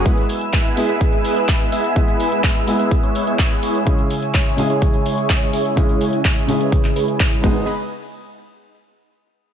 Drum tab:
CC |----------------|----------------|----------------|--------------x-|
HH |xxoxxxoxxxoxxxox|xxoxxxoxxxoxxxox|xxoxxxoxxxoxxxox|xxoxxxoxxxoxxx--|
TB |xxxxxxxxx-xxx-xx|xxxxxxxxx-xxx-xx|xxxxxxxxx-xxx-xx|xxxxxxxxxxxxxx--|
CP |----x-------x---|----x-------x---|----x-------x---|----x----x--x---|
BD |o---o---o---o---|o---o---o---o---|o---o---o---o---|o---o---o---o-o-|

CC |----------------|
HH |----------------|
TB |----------------|
CP |----------------|
BD |----------------|